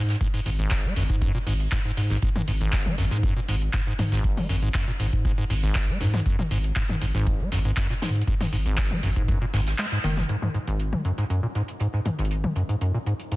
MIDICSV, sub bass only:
0, 0, Header, 1, 2, 480
1, 0, Start_track
1, 0, Tempo, 504202
1, 198, Time_signature, 4, 2, 24, 8
1, 12722, End_track
2, 0, Start_track
2, 0, Title_t, "Sub bass"
2, 0, Program_c, 0, 38
2, 0, Note_on_c, 0, 44, 102
2, 151, Note_off_c, 0, 44, 0
2, 439, Note_on_c, 0, 32, 101
2, 631, Note_off_c, 0, 32, 0
2, 918, Note_on_c, 0, 32, 94
2, 1017, Note_off_c, 0, 32, 0
2, 1043, Note_on_c, 0, 44, 82
2, 1232, Note_off_c, 0, 44, 0
2, 1399, Note_on_c, 0, 32, 89
2, 1591, Note_off_c, 0, 32, 0
2, 1880, Note_on_c, 0, 44, 91
2, 2072, Note_off_c, 0, 44, 0
2, 2359, Note_on_c, 0, 32, 100
2, 2551, Note_off_c, 0, 32, 0
2, 2839, Note_on_c, 0, 32, 94
2, 2938, Note_off_c, 0, 32, 0
2, 2965, Note_on_c, 0, 44, 85
2, 3153, Note_off_c, 0, 44, 0
2, 3319, Note_on_c, 0, 32, 86
2, 3511, Note_off_c, 0, 32, 0
2, 3798, Note_on_c, 0, 44, 100
2, 3991, Note_off_c, 0, 44, 0
2, 4279, Note_on_c, 0, 32, 103
2, 4471, Note_off_c, 0, 32, 0
2, 4759, Note_on_c, 0, 32, 95
2, 4858, Note_off_c, 0, 32, 0
2, 4883, Note_on_c, 0, 44, 84
2, 5072, Note_off_c, 0, 44, 0
2, 5240, Note_on_c, 0, 32, 86
2, 5432, Note_off_c, 0, 32, 0
2, 5719, Note_on_c, 0, 44, 101
2, 5911, Note_off_c, 0, 44, 0
2, 6197, Note_on_c, 0, 32, 103
2, 6390, Note_off_c, 0, 32, 0
2, 6678, Note_on_c, 0, 32, 98
2, 6778, Note_off_c, 0, 32, 0
2, 6803, Note_on_c, 0, 44, 85
2, 6992, Note_off_c, 0, 44, 0
2, 7159, Note_on_c, 0, 32, 84
2, 7351, Note_off_c, 0, 32, 0
2, 7638, Note_on_c, 0, 44, 104
2, 7831, Note_off_c, 0, 44, 0
2, 8118, Note_on_c, 0, 32, 101
2, 8311, Note_off_c, 0, 32, 0
2, 8598, Note_on_c, 0, 32, 97
2, 8697, Note_off_c, 0, 32, 0
2, 8723, Note_on_c, 0, 44, 87
2, 8912, Note_off_c, 0, 44, 0
2, 9078, Note_on_c, 0, 32, 89
2, 9271, Note_off_c, 0, 32, 0
2, 9559, Note_on_c, 0, 30, 84
2, 9751, Note_off_c, 0, 30, 0
2, 12722, End_track
0, 0, End_of_file